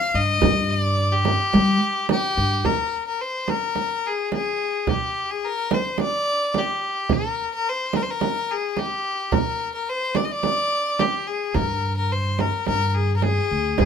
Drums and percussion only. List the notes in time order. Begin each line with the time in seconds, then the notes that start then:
0.42 frame drum
1.25 frame drum
1.53 frame drum
2.09 frame drum
2.65 frame drum
3.48 frame drum
3.75 frame drum
4.32 frame drum
4.87 frame drum
5.71 frame drum
5.98 frame drum
6.54 frame drum
7.09 frame drum
7.93 frame drum
8.21 frame drum
8.77 frame drum
9.32 frame drum
10.15 frame drum
10.43 frame drum
10.99 frame drum
11.54 frame drum
12.39 frame drum
12.67 frame drum
13.22 frame drum
13.78 frame drum